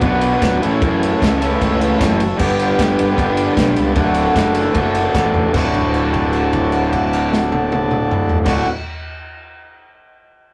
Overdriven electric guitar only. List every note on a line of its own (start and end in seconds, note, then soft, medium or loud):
0.02 0.60 B2 medium
0.02 0.61 F#3 medium
0.02 0.61 B3 medium
0.02 0.62 D4 medium
0.02 0.62 F#4 medium
0.07 0.63 B4 medium
0.60 1.39 A2 loud
0.60 1.40 E3 loud
0.60 1.40 A3 loud
0.60 1.41 C#4 loud
0.60 1.41 E4 loud
0.60 1.40 A4 loud
1.41 2.21 A3 medium
1.41 2.20 C#4 medium
1.41 2.20 E4 medium
1.41 2.19 A4 loud
1.45 2.21 A2 medium
1.45 2.21 E3 medium
2.37 3.14 G2 medium
2.37 3.16 D3 medium
2.37 3.16 G3 loud
2.37 3.17 B3 loud
2.41 3.19 D4 loud
2.41 3.19 G4 loud
3.16 3.94 G2 medium
3.16 3.96 D3 medium
3.16 3.96 G3 medium
3.16 3.96 B3 medium
3.16 6.69 D4 medium
3.20 3.97 G4 medium
3.95 4.73 D2 medium
3.95 4.74 A2 medium
3.95 4.75 D3 loud
3.99 4.76 A3 loud
3.99 4.76 F#4 loud
4.74 5.52 D2 medium
4.74 5.54 A2 medium
4.74 5.54 D3 medium
4.74 5.54 A3 medium
4.74 5.55 F#4 medium
5.54 8.45 D2 loud
5.54 8.46 A2 medium
5.54 8.46 D3 loud
5.54 8.47 A3 loud
5.58 8.49 F#4 loud
8.45 8.64 D2 medium
8.45 8.65 A2 medium
8.45 8.65 D3 loud
8.45 8.65 A3 loud
8.45 8.66 F#4 loud